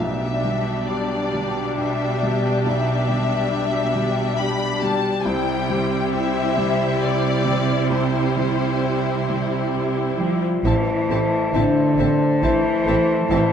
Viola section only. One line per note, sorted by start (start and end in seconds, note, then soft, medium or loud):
0.00 5.21 G3 soft
0.00 5.21 D4 soft
5.26 10.42 G3 soft
5.26 10.42 E4 medium
10.66 10.74 C4 soft
11.10 11.18 C4 soft
11.55 11.63 C4 soft
11.99 12.07 C4 soft
12.43 12.51 C4 soft
12.87 12.95 C4 soft
13.31 13.39 C4 soft